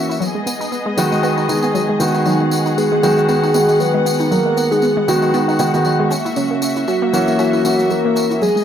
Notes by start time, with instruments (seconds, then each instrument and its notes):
Already playing: grand piano E3 A#3 C#4 F#4, string section A#3 F#4 E5
0.09 synth arpeggio sound E4, tambourine, cabasa
0.20 synth arpeggio sound F#3, string section B3 G#4 D#5, tambourine, cabasa
0.35 synth arpeggio sound G#3
0.46 synth arpeggio sound B3, tambourine, cabasa
0.61 synth arpeggio sound D#4, tambourine, cabasa
0.72 synth arpeggio sound B3, tambourine, cabasa
0.86 synth arpeggio sound G#3
0.97 grand piano D#3 G#3 B3 F#4, synth arpeggio sound F#3, tambourine, cabasa
1.12 synth arpeggio sound G#3, tambourine, cabasa
1.23 synth arpeggio sound B3, tambourine, cabasa
1.38 synth arpeggio sound D#4, tambourine
1.49 grand piano D#3 G#3 B3 G#4, synth arpeggio sound D#4, tambourine, cabasa
1.63 synth arpeggio sound B3, tambourine, cabasa
1.75 synth arpeggio sound F#3, tambourine, cabasa
1.89 synth arpeggio sound G#3
2.00 grand piano D#3 G#3 B3 F#4, synth arpeggio sound D#4, tambourine, cabasa
2.14 synth arpeggio sound D#4, tambourine, cabasa
2.25 synth arpeggio sound F#3, string section B3 F#5, soft synth lead D#4, tambourine, cabasa
2.40 synth arpeggio sound G#3
2.51 synth arpeggio sound B3, tambourine, cabasa
2.66 synth arpeggio sound D#4, tambourine, cabasa
2.77 synth arpeggio sound B3, soft synth lead G#4, tambourine, cabasa
2.92 synth arpeggio sound G#3
3.03 grand piano D#3 G#3 B3 F#4, synth arpeggio sound F#3, tambourine, cabasa
3.17 synth arpeggio sound G#3, tambourine, cabasa
3.29 synth arpeggio sound B3, soft synth lead G#4, tambourine, cabasa
3.43 synth arpeggio sound D#4, tambourine
3.54 grand piano D#3 G#3 B3 F#4, synth arpeggio sound B3, tambourine, cabasa
3.69 synth arpeggio sound G#3, tambourine, cabasa
3.80 synth arpeggio sound F#3, soft synth lead B4, tambourine, cabasa
3.94 synth arpeggio sound G#3
4.06 synth arpeggio sound B3, tambourine, cabasa
4.20 synth arpeggio sound D#4, tambourine, cabasa
4.31 synth arpeggio sound F#3, string section F#4, soft synth lead A#4, tambourine, cabasa
4.46 synth arpeggio sound G#3
4.57 synth arpeggio sound B3, tambourine, cabasa
4.71 synth arpeggio sound D#4, soft synth lead G#4, tambourine, cabasa
4.82 synth arpeggio sound B3, tambourine, cabasa
4.97 synth arpeggio sound G#3
5.08 grand piano D#3 G#3 B3 F#4, synth arpeggio sound F#3, soft synth lead F#4, tambourine, cabasa
5.22 synth arpeggio sound G#3, tambourine, cabasa
5.34 synth arpeggio sound B3, soft synth lead D#4, tambourine, cabasa
5.48 synth arpeggio sound D#4, tambourine
5.59 grand piano D#3 G#3 B3 F#4, synth arpeggio sound B3, tambourine, cabasa
5.73 grand piano D#3 G#3 B3 F#4, synth arpeggio sound G#3, tambourine, cabasa
5.85 synth arpeggio sound F#3, tambourine, cabasa
6.00 synth arpeggio sound G#3
6.11 string section A#3 E5, synth arpeggio sound C#4, tambourine, cabasa
6.25 synth arpeggio sound E4, tambourine, cabasa
6.36 synth arpeggio sound F#3, soft synth lead C#4, tambourine, cabasa
6.51 synth arpeggio sound A#3
6.62 synth arpeggio sound C#4, tambourine, cabasa
6.76 synth arpeggio sound E4, tambourine, cabasa
6.88 synth arpeggio sound C#4, soft synth lead F#4, tambourine, cabasa
7.02 synth arpeggio sound A#3
7.13 grand piano E3 A#3 C#4 F#4, synth arpeggio sound F#3, tambourine, cabasa
7.27 synth arpeggio sound A#3, tambourine, cabasa
7.39 synth arpeggio sound C#4, soft synth lead F#4, tambourine, cabasa
7.53 synth arpeggio sound E4, tambourine
7.64 grand piano E3 A#3 C#4 F#4, synth arpeggio sound C#4, tambourine, cabasa
7.79 synth arpeggio sound A#3, tambourine, cabasa
7.90 synth arpeggio sound F#3, soft synth lead A#4, tambourine, cabasa
8.05 synth arpeggio sound A#3
8.16 synth arpeggio sound C#4, tambourine, cabasa
8.30 synth arpeggio sound E4, tambourine, cabasa
8.41 synth arpeggio sound F#3, string section B3 G#4 D#5, soft synth lead G#4, tambourine, cabasa
8.56 synth arpeggio sound G#3, tambourine